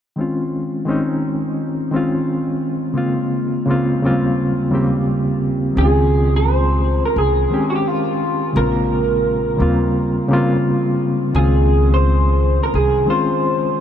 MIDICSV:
0, 0, Header, 1, 4, 480
1, 0, Start_track
1, 0, Tempo, 697674
1, 123, Time_signature, 4, 2, 24, 8
1, 9497, End_track
2, 0, Start_track
2, 0, Title_t, "Clean electric guitar"
2, 0, Program_c, 0, 27
2, 3979, Note_on_c, 0, 68, 97
2, 4376, Note_off_c, 0, 68, 0
2, 4378, Note_on_c, 0, 72, 100
2, 4851, Note_off_c, 0, 72, 0
2, 4854, Note_on_c, 0, 70, 83
2, 4933, Note_off_c, 0, 70, 0
2, 4942, Note_on_c, 0, 68, 93
2, 5265, Note_off_c, 0, 68, 0
2, 5298, Note_on_c, 0, 66, 68
2, 5328, Note_off_c, 0, 66, 0
2, 5336, Note_on_c, 0, 67, 91
2, 5420, Note_off_c, 0, 67, 0
2, 5420, Note_on_c, 0, 65, 84
2, 5892, Note_off_c, 0, 65, 0
2, 5895, Note_on_c, 0, 70, 92
2, 7302, Note_off_c, 0, 70, 0
2, 7814, Note_on_c, 0, 68, 95
2, 8177, Note_off_c, 0, 68, 0
2, 8213, Note_on_c, 0, 72, 90
2, 8689, Note_off_c, 0, 72, 0
2, 8692, Note_on_c, 0, 70, 78
2, 8771, Note_off_c, 0, 70, 0
2, 8774, Note_on_c, 0, 68, 89
2, 9011, Note_off_c, 0, 68, 0
2, 9013, Note_on_c, 0, 72, 95
2, 9497, Note_off_c, 0, 72, 0
2, 9497, End_track
3, 0, Start_track
3, 0, Title_t, "Reed electric piano"
3, 0, Program_c, 1, 4
3, 110, Note_on_c, 1, 51, 66
3, 119, Note_on_c, 1, 56, 57
3, 127, Note_on_c, 1, 60, 61
3, 134, Note_on_c, 1, 61, 60
3, 143, Note_on_c, 1, 65, 64
3, 250, Control_c, 1, 64, 127
3, 561, Note_off_c, 1, 51, 0
3, 565, Note_off_c, 1, 56, 0
3, 569, Note_off_c, 1, 60, 0
3, 573, Note_off_c, 1, 61, 0
3, 577, Note_off_c, 1, 65, 0
3, 587, Note_on_c, 1, 51, 79
3, 597, Note_on_c, 1, 56, 76
3, 606, Note_on_c, 1, 60, 80
3, 613, Note_on_c, 1, 61, 75
3, 622, Note_on_c, 1, 63, 90
3, 1261, Note_off_c, 1, 51, 0
3, 1266, Note_off_c, 1, 56, 0
3, 1271, Note_off_c, 1, 60, 0
3, 1274, Note_off_c, 1, 61, 0
3, 1279, Note_off_c, 1, 63, 0
3, 1316, Note_on_c, 1, 51, 75
3, 1323, Note_on_c, 1, 56, 67
3, 1331, Note_on_c, 1, 60, 70
3, 1340, Note_on_c, 1, 61, 61
3, 1349, Note_on_c, 1, 65, 84
3, 1986, Note_off_c, 1, 51, 0
3, 1989, Note_off_c, 1, 56, 0
3, 1993, Note_off_c, 1, 60, 0
3, 1998, Note_off_c, 1, 61, 0
3, 2002, Note_off_c, 1, 65, 0
3, 2015, Note_on_c, 1, 49, 66
3, 2022, Note_on_c, 1, 56, 60
3, 2030, Note_on_c, 1, 58, 70
3, 2040, Note_on_c, 1, 60, 67
3, 2048, Note_on_c, 1, 65, 77
3, 2053, Control_c, 1, 64, 0
3, 2162, Control_c, 1, 64, 127
3, 2473, Note_off_c, 1, 49, 0
3, 2477, Note_off_c, 1, 56, 0
3, 2481, Note_off_c, 1, 58, 0
3, 2486, Note_off_c, 1, 60, 0
3, 2490, Note_off_c, 1, 65, 0
3, 2518, Note_on_c, 1, 49, 87
3, 2526, Note_on_c, 1, 56, 73
3, 2534, Note_on_c, 1, 58, 76
3, 2542, Note_on_c, 1, 60, 73
3, 2550, Note_on_c, 1, 65, 84
3, 2759, Note_off_c, 1, 49, 0
3, 2762, Note_on_c, 1, 39, 77
3, 2765, Note_off_c, 1, 56, 0
3, 2767, Note_on_c, 1, 49, 69
3, 2769, Note_off_c, 1, 58, 0
3, 2771, Control_c, 1, 64, 0
3, 2773, Note_off_c, 1, 60, 0
3, 2775, Note_on_c, 1, 54, 55
3, 2777, Note_off_c, 1, 65, 0
3, 2783, Note_on_c, 1, 58, 70
3, 2788, Note_on_c, 1, 60, 76
3, 2795, Note_on_c, 1, 65, 82
3, 2820, Note_on_c, 1, 55, 71
3, 2827, Note_off_c, 1, 54, 0
3, 2895, Control_c, 1, 64, 127
3, 3207, Note_off_c, 1, 39, 0
3, 3209, Note_off_c, 1, 49, 0
3, 3217, Note_off_c, 1, 58, 0
3, 3220, Note_off_c, 1, 60, 0
3, 3223, Note_off_c, 1, 65, 0
3, 3233, Note_on_c, 1, 39, 78
3, 3236, Note_off_c, 1, 55, 0
3, 3239, Note_on_c, 1, 49, 74
3, 3245, Note_on_c, 1, 55, 70
3, 3253, Note_on_c, 1, 58, 66
3, 3258, Note_on_c, 1, 60, 72
3, 3266, Note_on_c, 1, 67, 85
3, 3904, Note_off_c, 1, 39, 0
3, 3907, Note_off_c, 1, 49, 0
3, 3910, Note_off_c, 1, 55, 0
3, 3914, Note_off_c, 1, 58, 0
3, 3917, Note_off_c, 1, 60, 0
3, 3921, Note_off_c, 1, 67, 0
3, 3942, Note_on_c, 1, 51, 68
3, 3952, Note_on_c, 1, 56, 61
3, 3959, Note_on_c, 1, 60, 59
3, 3968, Note_on_c, 1, 61, 61
3, 3972, Control_c, 1, 64, 0
3, 3977, Note_on_c, 1, 63, 56
3, 4021, Note_on_c, 1, 65, 72
3, 4028, Note_off_c, 1, 63, 0
3, 4083, Control_c, 1, 64, 127
3, 4841, Note_off_c, 1, 51, 0
3, 4846, Note_off_c, 1, 56, 0
3, 4849, Note_off_c, 1, 60, 0
3, 4854, Note_off_c, 1, 61, 0
3, 4880, Note_off_c, 1, 65, 0
3, 5155, Note_on_c, 1, 51, 73
3, 5163, Note_on_c, 1, 56, 63
3, 5170, Note_on_c, 1, 60, 69
3, 5178, Note_on_c, 1, 61, 70
3, 5187, Note_on_c, 1, 67, 84
3, 5825, Note_off_c, 1, 51, 0
3, 5829, Note_off_c, 1, 56, 0
3, 5833, Note_off_c, 1, 60, 0
3, 5837, Note_off_c, 1, 61, 0
3, 5841, Note_off_c, 1, 67, 0
3, 5866, Note_on_c, 1, 49, 68
3, 5873, Note_on_c, 1, 56, 53
3, 5882, Note_on_c, 1, 58, 62
3, 5890, Note_on_c, 1, 60, 58
3, 5894, Control_c, 1, 64, 0
3, 5898, Note_on_c, 1, 65, 70
3, 5993, Control_c, 1, 64, 127
3, 6578, Note_off_c, 1, 49, 0
3, 6586, Note_on_c, 1, 49, 77
3, 6593, Note_off_c, 1, 58, 0
3, 6593, Note_on_c, 1, 55, 84
3, 6598, Note_off_c, 1, 56, 0
3, 6600, Note_off_c, 1, 60, 0
3, 6602, Note_on_c, 1, 58, 83
3, 6609, Note_on_c, 1, 60, 71
3, 6611, Note_off_c, 1, 65, 0
3, 6613, Control_c, 1, 64, 0
3, 6618, Note_on_c, 1, 65, 90
3, 6750, Control_c, 1, 64, 127
3, 7039, Note_off_c, 1, 49, 0
3, 7042, Note_off_c, 1, 55, 0
3, 7047, Note_off_c, 1, 58, 0
3, 7050, Note_off_c, 1, 60, 0
3, 7055, Note_off_c, 1, 65, 0
3, 7075, Note_on_c, 1, 49, 99
3, 7084, Note_on_c, 1, 55, 70
3, 7092, Note_on_c, 1, 58, 85
3, 7100, Note_on_c, 1, 60, 75
3, 7108, Note_on_c, 1, 65, 98
3, 7745, Note_off_c, 1, 49, 0
3, 7750, Note_off_c, 1, 55, 0
3, 7754, Note_off_c, 1, 58, 0
3, 7758, Note_off_c, 1, 60, 0
3, 7762, Note_off_c, 1, 65, 0
3, 7797, Note_on_c, 1, 51, 70
3, 7806, Note_on_c, 1, 56, 61
3, 7813, Control_c, 1, 64, 0
3, 7813, Note_on_c, 1, 60, 61
3, 7822, Note_on_c, 1, 61, 58
3, 7829, Note_on_c, 1, 65, 74
3, 7951, Control_c, 1, 64, 127
3, 8688, Note_off_c, 1, 51, 0
3, 8693, Note_off_c, 1, 56, 0
3, 8696, Note_off_c, 1, 60, 0
3, 8700, Note_off_c, 1, 61, 0
3, 8704, Note_off_c, 1, 65, 0
3, 8983, Note_on_c, 1, 51, 72
3, 8991, Note_on_c, 1, 56, 66
3, 8999, Note_on_c, 1, 60, 66
3, 9007, Note_on_c, 1, 61, 71
3, 9016, Note_on_c, 1, 65, 87
3, 9497, Note_off_c, 1, 51, 0
3, 9497, Note_off_c, 1, 56, 0
3, 9497, Note_off_c, 1, 60, 0
3, 9497, Note_off_c, 1, 61, 0
3, 9497, Note_off_c, 1, 65, 0
3, 9497, End_track
4, 0, Start_track
4, 0, Title_t, "Upright bass"
4, 0, Program_c, 2, 32
4, 3969, Note_on_c, 2, 37, 90
4, 4814, Note_off_c, 2, 37, 0
4, 4927, Note_on_c, 2, 36, 82
4, 5123, Note_off_c, 2, 36, 0
4, 5887, Note_on_c, 2, 34, 97
4, 6578, Note_off_c, 2, 34, 0
4, 6605, Note_on_c, 2, 39, 82
4, 6999, Note_off_c, 2, 39, 0
4, 7806, Note_on_c, 2, 37, 97
4, 8652, Note_off_c, 2, 37, 0
4, 8763, Note_on_c, 2, 36, 82
4, 8960, Note_off_c, 2, 36, 0
4, 9497, End_track
0, 0, End_of_file